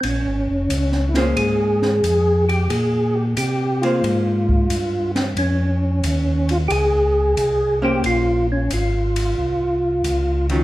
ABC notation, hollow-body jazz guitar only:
X:1
M:4/4
L:1/8
Q:"Swing" 1/4=90
K:Bbdor
V:1 name="Hollow-body jazz guitar"
z3 [B,DAc]3 z2 | z3 [B,Ac]3 z2 | z6 z [B,Dc]- | [B,Dc]2 z4 z [E,_G,DF] |]